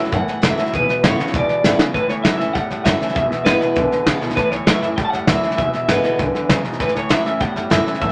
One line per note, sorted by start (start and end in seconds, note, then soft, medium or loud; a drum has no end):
0.00 0.11 F#3 loud
0.00 0.12 C#4 medium
0.00 0.11 E4 medium
0.00 0.10 E5 loud
0.05 snare soft
0.11 0.70 E2 medium
0.11 0.26 F#2 loud
0.11 0.39 A2 medium
0.11 0.39 E3 loud
0.11 0.22 C#5 medium
0.11 0.22 E5 medium
0.11 0.44 F#5 loud
0.11 0.22 A5 loud
0.11 kick loud
0.11 snare soft
0.28 0.37 C#5 medium
0.28 0.37 E5 medium
0.28 0.37 A5 medium
0.28 muted upright bass stroke medium
0.28 snare soft
0.42 0.57 F#1 loud
0.42 0.56 A2 loud
0.42 0.57 E3 medium
0.42 0.56 F#3 loud
0.42 0.57 A3 loud
0.42 0.57 C#4 loud
0.42 0.56 E4 loud
0.42 0.51 C#5 medium
0.42 0.51 E5 medium
0.42 0.72 E5 loud
0.42 0.52 A5 medium
0.42 snare loud
0.42 hi-hat pedal loud
0.57 0.71 A2 medium
0.57 0.72 F#3 medium
0.57 0.73 C#4 medium
0.57 0.72 E4 medium
0.57 0.67 C#5 medium
0.57 0.67 E5 medium
0.57 0.67 A5 medium
0.57 muted upright bass stroke medium
0.57 snare soft
0.66 snare soft
0.72 0.88 E1 medium
0.72 1.00 E2 medium
0.72 1.31 E2 medium
0.72 1.00 B2 medium
0.72 0.82 B4 loud
0.72 1.05 B4 loud
0.72 0.82 E5 loud
0.72 0.83 G#5 loud
0.72 kick medium
0.72 snare soft
0.87 0.96 B4 medium
0.87 0.97 E5 medium
0.87 0.97 G#5 medium
0.87 muted upright bass stroke medium
0.87 snare soft
1.03 1.18 G#1 medium
1.03 1.17 E2 medium
1.03 1.17 C#3 loud
1.03 1.18 D3 loud
1.03 1.19 G#3 loud
1.03 1.19 B3 loud
1.03 1.18 E4 loud
1.03 1.12 B4 medium
1.03 1.36 C#5 loud
1.03 1.12 E5 medium
1.03 1.12 G#5 medium
1.03 snare loud
1.03 hi-hat pedal medium
1.17 1.31 E2 loud
1.17 1.32 C#3 medium
1.17 1.33 E4 medium
1.17 1.27 B4 medium
1.17 1.27 E5 medium
1.17 1.27 F#5 medium
1.17 muted upright bass stroke medium
1.17 snare soft
1.21 1.34 B3 soft
1.27 snare soft
1.33 1.48 E1 medium
1.33 1.60 E2 medium
1.33 1.61 B2 loud
1.33 1.92 B2 loud
1.33 1.42 B4 medium
1.33 1.43 E5 medium
1.33 1.43 G#5 loud
1.33 kick loud
1.33 snare soft
1.37 1.78 D5 medium
1.48 1.57 B4 medium
1.48 1.57 G#5 medium
1.48 muted upright bass stroke medium
1.48 snare soft
1.63 1.78 G#1 medium
1.63 1.78 E2 medium
1.63 1.78 C#3 medium
1.63 1.79 D3 medium
1.63 1.79 G#3 medium
1.63 1.79 B3 loud
1.63 1.79 E4 medium
1.63 1.73 B4 medium
1.63 1.73 E5 medium
1.63 1.73 G#5 medium
1.63 snare medium
1.63 hi-hat pedal loud
1.78 1.93 E2 medium
1.78 1.93 C#3 medium
1.78 1.94 E4 medium
1.78 1.88 B4 medium
1.78 1.88 E5 medium
1.78 1.88 G#5 medium
1.78 muted upright bass stroke medium
1.78 snare loud
1.82 1.95 B3 medium
1.93 2.08 A1 medium
1.93 2.07 A2 medium
1.93 2.53 A2 medium
1.93 2.08 E3 medium
1.93 2.09 B4 loud
1.93 2.03 C#5 loud
1.93 2.03 E5 medium
1.93 2.03 A5 loud
1.93 kick medium
1.93 snare soft
2.09 2.24 D2 medium
2.09 2.23 A2 medium
2.09 2.23 E3 medium
2.09 2.18 C#5 medium
2.09 2.14 C#5 medium
2.09 2.18 E5 medium
2.09 2.19 A5 medium
2.09 snare soft
2.24 2.37 A2 medium
2.24 2.39 E3 loud
2.24 2.38 F#3 medium
2.24 2.40 A3 loud
2.24 2.40 C#4 loud
2.24 2.39 E4 loud
2.24 2.33 C#5 medium
2.24 2.36 E5 loud
2.24 2.34 A5 medium
2.24 kick medium
2.24 snare loud
2.24 hi-hat pedal medium
2.38 2.54 F#2 medium
2.38 2.53 A2 medium
2.38 2.53 E3 loud
2.38 2.54 E4 medium
2.38 2.49 C#5 medium
2.38 2.53 E5 medium
2.38 2.49 E5 medium
2.38 2.50 A5 medium
2.38 snare soft
2.42 2.55 C#4 medium
2.54 3.13 E2 medium
2.54 2.69 F#2 loud
2.54 2.68 A2 medium
2.54 2.69 G3 loud
2.54 2.64 C#5 medium
2.54 2.64 E5 medium
2.54 2.85 F#5 loud
2.54 2.64 A5 loud
2.54 kick loud
2.54 snare soft
2.70 2.85 F#2 medium
2.70 2.84 A2 medium
2.70 2.84 G3 medium
2.70 2.79 C#5 medium
2.70 2.79 E5 medium
2.70 2.79 A5 medium
2.70 snare soft
2.85 3.00 F#2 medium
2.85 2.98 A2 medium
2.85 3.00 E3 medium
2.85 2.99 F#3 loud
2.85 3.00 A3 medium
2.85 3.00 C#4 medium
2.85 2.99 E4 loud
2.85 2.95 C#5 medium
2.85 3.15 E5 loud
2.85 2.95 E5 medium
2.85 2.95 A5 medium
2.85 kick loud
2.85 snare loud
2.85 hi-hat pedal loud
2.99 3.14 A2 medium
2.99 3.14 E3 medium
2.99 3.16 C#4 medium
2.99 3.15 E4 medium
2.99 3.10 C#5 medium
2.99 3.10 E5 medium
2.99 3.10 A5 medium
2.99 muted upright bass stroke medium
2.99 snare soft
3.09 snare soft
3.14 3.30 E1 medium
3.14 3.29 E2 medium
3.14 3.73 E2 medium
3.14 3.29 B2 medium
3.14 3.25 B4 medium
3.14 3.44 E5 loud
3.14 3.26 E5 medium
3.14 3.26 G#5 loud
3.14 kick loud
3.14 snare soft
3.30 3.43 E2 medium
3.30 3.44 B2 medium
3.30 3.40 B4 medium
3.30 3.41 G#5 medium
3.30 muted upright bass stroke medium
3.30 snare soft
3.45 3.59 G#1 medium
3.45 3.58 E2 medium
3.45 3.59 C#3 medium
3.45 3.60 D3 medium
3.45 3.61 G#3 medium
3.45 3.61 B3 loud
3.45 3.60 E4 loud
3.45 4.17 B4 loud
3.45 3.55 B4 medium
3.45 3.56 G#5 medium
3.45 kick medium
3.45 snare medium
3.45 hi-hat pedal medium
3.59 3.74 E2 medium
3.59 3.74 B2 loud
3.59 3.76 B3 soft
3.59 3.76 E4 medium
3.59 3.70 B4 medium
3.59 3.71 E5 medium
3.59 3.71 G#5 medium
3.59 muted upright bass stroke medium
3.59 snare soft
3.75 3.89 B1 medium
3.75 3.88 E2 medium
3.75 4.34 B2 medium
3.75 3.89 D3 loud
3.75 3.85 B4 medium
3.75 3.86 E5 medium
3.75 3.86 G#5 loud
3.75 kick loud
3.75 snare soft
3.89 4.03 E2 medium
3.89 4.05 D3 medium
3.89 4.01 B4 medium
3.89 4.01 E5 medium
3.89 4.01 G#5 medium
3.89 muted upright bass stroke medium
3.89 snare soft
4.05 4.21 D2 medium
4.05 4.19 E2 medium
4.05 4.20 C#3 medium
4.05 4.21 D3 medium
4.05 4.21 G#3 loud
4.05 4.22 B3 loud
4.05 4.20 E4 medium
4.05 4.16 B4 medium
4.05 4.17 E5 medium
4.05 4.17 G#5 loud
4.05 kick loud
4.05 snare loud
4.05 hi-hat pedal loud
4.20 4.36 C#2 loud
4.20 4.35 E2 medium
4.20 4.35 B2 medium
4.20 4.37 B3 medium
4.20 4.36 E4 medium
4.20 4.31 B4 medium
4.20 4.31 E5 medium
4.20 4.31 G#5 loud
4.20 snare soft
4.30 snare soft
4.36 4.50 A2 medium
4.36 4.95 A2 medium
4.36 4.51 E3 medium
4.36 4.50 B4 loud
4.36 4.46 C#5 loud
4.36 4.46 E5 medium
4.36 4.46 A5 loud
4.36 kick loud
4.36 snare soft
4.50 4.67 D2 medium
4.50 4.65 A2 medium
4.50 4.66 E3 medium
4.50 4.67 C#5 medium
4.50 4.61 C#5 medium
4.50 4.61 E5 medium
4.50 snare soft
4.66 4.81 A2 medium
4.66 4.82 E3 loud
4.66 4.81 F#3 medium
4.66 4.82 A3 loud
4.66 4.83 C#4 loud
4.66 4.81 E4 loud
4.66 4.77 C#5 medium
4.66 4.82 E5 loud
4.66 4.77 A5 medium
4.66 kick medium
4.66 snare loud
4.66 hi-hat pedal medium
4.82 4.96 F#2 medium
4.82 4.96 A2 medium
4.82 4.97 E3 medium
4.82 4.98 C#4 soft
4.82 4.97 E4 medium
4.82 4.92 C#5 medium
4.82 4.92 E5 medium
4.82 4.88 E5 medium
4.82 4.92 A5 medium
4.82 snare soft
4.96 5.56 E2 loud
4.96 5.12 F#2 medium
4.96 5.11 A2 medium
4.96 5.11 G3 loud
4.96 5.07 C#5 medium
4.96 5.07 E5 medium
4.96 5.04 F#5 loud
4.96 5.07 A5 loud
4.96 kick loud
4.96 snare soft
5.05 5.10 A5 medium
5.10 5.27 F#2 medium
5.10 5.26 A2 medium
5.10 5.27 G3 medium
5.10 5.22 C#5 medium
5.10 5.22 E5 medium
5.10 5.28 F#5 medium
5.10 snare soft
5.27 5.42 D2 medium
5.27 5.41 A2 medium
5.27 5.57 E3 loud
5.27 5.42 F#3 medium
5.27 5.58 A3 loud
5.27 5.58 C#4 loud
5.27 5.58 E4 loud
5.27 5.37 C#5 medium
5.27 5.57 E5 loud
5.27 5.37 A5 medium
5.27 kick loud
5.27 snare loud
5.27 hi-hat pedal loud
5.43 5.57 A2 medium
5.43 5.57 E3 medium
5.43 5.52 C#5 medium
5.43 5.53 A5 medium
5.43 snare soft
5.51 snare soft
5.58 5.72 E1 medium
5.58 5.72 E2 medium
5.58 6.17 E2 medium
5.58 5.72 B2 loud
5.58 5.67 B4 medium
5.58 5.67 E5 medium
5.58 5.90 E5 loud
5.58 5.68 G#5 loud
5.58 kick loud
5.58 snare soft
5.73 5.87 E2 medium
5.73 5.88 B2 medium
5.73 5.82 B4 medium
5.73 5.83 E5 medium
5.73 5.83 G#5 medium
5.73 snare soft
5.88 6.03 G#1 loud
5.88 6.02 E2 medium
5.88 6.03 C#3 medium
5.88 6.19 D3 loud
5.88 6.19 G#3 loud
5.88 6.19 B3 loud
5.88 5.98 B4 medium
5.88 6.61 B4 loud
5.88 5.98 E5 medium
5.88 5.98 G#5 medium
5.88 kick medium
5.88 snare loud
5.88 hi-hat pedal medium
5.92 6.20 E4 loud
6.03 6.18 E2 medium
6.03 6.18 B2 loud
6.03 6.13 B4 medium
6.03 6.13 E5 medium
6.03 6.13 G#5 medium
6.03 muted upright bass stroke medium
6.03 snare soft
6.19 6.34 B1 loud
6.19 6.33 E2 medium
6.19 6.48 F#2 medium
6.19 6.33 D3 loud
6.19 6.28 B4 medium
6.19 6.29 E5 medium
6.19 6.29 G#5 medium
6.19 kick loud
6.19 snare soft
6.34 6.48 E2 medium
6.34 6.48 D3 medium
6.34 6.43 B4 medium
6.34 6.44 E5 medium
6.34 6.44 G#5 loud
6.34 muted upright bass stroke medium
6.34 snare soft
6.49 6.63 E2 medium
6.49 6.79 G#2 medium
6.49 6.63 C#3 medium
6.49 6.58 B4 medium
6.49 6.59 E5 medium
6.49 6.59 G#5 loud
6.49 kick loud
6.49 snare loud
6.49 hi-hat pedal loud
6.64 6.79 G#1 loud
6.64 6.78 E2 medium
6.64 6.78 B2 medium
6.64 6.74 B4 medium
6.64 6.74 E5 medium
6.64 6.74 G#5 medium
6.64 snare soft
6.72 snare soft
6.79 6.94 A1 medium
6.79 6.93 A2 medium
6.79 7.38 A2 medium
6.79 6.94 E3 medium
6.79 6.96 B4 loud
6.79 6.89 C#5 loud
6.79 6.90 E5 medium
6.79 6.90 A5 medium
6.79 kick loud
6.79 snare soft
6.88 snare soft
6.94 7.10 D2 medium
6.94 7.09 A2 medium
6.94 7.09 E3 medium
6.94 7.04 C#5 medium
6.94 7.12 C#5 medium
6.94 7.04 E5 medium
6.94 7.04 A5 medium
6.94 snare soft
7.09 7.24 A2 medium
7.09 7.24 E3 loud
7.09 7.24 F#3 medium
7.09 7.25 A3 loud
7.09 7.25 C#4 medium
7.09 7.23 E4 loud
7.09 7.19 C#5 medium
7.09 7.19 E5 medium
7.09 7.25 E5 medium
7.09 7.20 A5 medium
7.09 kick medium
7.09 snare loud
7.09 hi-hat pedal medium
7.25 7.40 F#2 medium
7.25 7.39 A2 medium
7.25 7.40 E3 loud
7.25 7.41 C#4 soft
7.25 7.40 E4 medium
7.25 7.34 C#5 medium
7.25 7.35 E5 medium
7.25 7.40 E5 medium
7.25 7.35 A5 medium
7.25 snare soft
7.40 7.98 E2 loud
7.40 7.55 F#2 medium
7.40 7.54 A2 medium
7.40 7.55 G3 loud
7.40 7.50 C#5 medium
7.40 7.50 E5 medium
7.40 7.71 F#5 loud
7.40 7.50 A5 loud
7.40 kick loud
7.40 snare soft
7.55 7.70 F#2 medium
7.55 7.69 A2 medium
7.55 7.70 G3 medium
7.55 7.65 C#5 medium
7.55 7.65 E5 medium
7.55 7.65 A5 medium
7.55 snare soft
7.70 7.85 F#2 medium
7.70 7.84 A2 medium
7.70 7.85 E3 loud
7.70 7.85 F#3 medium
7.70 7.86 A3 loud
7.70 7.86 C#4 medium
7.70 7.85 E4 loud
7.70 7.80 C#5 medium
7.70 8.00 E5 loud
7.70 7.80 A5 medium
7.70 kick loud
7.70 snare loud
7.70 hi-hat pedal loud
7.86 8.00 A2 medium
7.86 8.01 E3 loud
7.86 8.01 C#4 medium
7.86 8.01 E4 medium
7.86 7.95 C#5 medium
7.86 7.95 E5 medium
7.86 7.96 A5 medium
7.86 muted upright bass stroke medium
7.86 snare soft
7.94 snare soft
8.00 8.12 A1 medium
8.00 8.12 A2 medium
8.00 8.12 E3 medium
8.00 8.10 C#5 loud
8.00 8.10 E5 medium
8.00 8.12 E5 loud
8.00 8.10 A5 loud
8.00 kick loud
8.00 snare soft